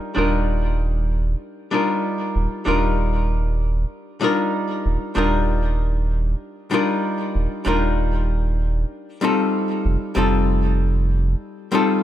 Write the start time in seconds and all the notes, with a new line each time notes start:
Already playing: G3 D4 D#4 F4 A#4
0.15 D#1 G3 D4 D#4 F4 A#4
1.71 G3 D4 D#4 F4 A#4
2.36 D#1
2.65 D#1 G3 D4 D#4 F4 A#4
4.21 G3 D4 D#4 F4 A#4
4.86 D#1
5.15 D#1 G3 D4 D#4 F4 A#4
6.71 G3 D4 D#4 F4 A#4
7.35 D#1
7.65 D#1 G3 D4 D#4 F4 A#4
9.21 G3 C4 D#4 F4 A4
9.85 F1
10.15 F1 G3 C4 D#4 F4 A4
11.72 G3 C4 D#4 F4 A4